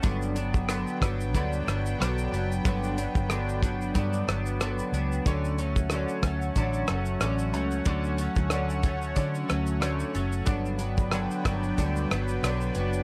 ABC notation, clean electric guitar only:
X:1
M:4/4
L:1/8
Q:"Swing 16ths" 1/4=92
K:Glyd
V:1 name="Clean electric guitar"
[G,,D,F,B,D] [F,B,D] [D,F,B,D] [F,B,D] [G,,D,F,B,D] [F,B,D] [D,F,B,D] [F,B,D] | [G,,D,F,B,D] [F,B,D] [D,F,B,D] [F,B,D] [G,,D,F,B,D] [F,B,D] [D,F,B,D] [F,B,D] | [D,F,A,C] [F,A,C] [D,F,A,C] [F,A,C] [D,F,A,C] [F,A,C] [D,F,A,C] [F,A,C] | [D,F,A,C] [F,A,C] [D,F,A,C] [F,A,C] [D,F,A,C] [F,A,C] [D,F,A,C] [F,A,C] |
[G,,D,F,B,D] [F,B,D] [D,F,B,D] [F,B,D] [G,,D,F,B,D] [F,B,D] [D,F,B,D] [F,B,D] |]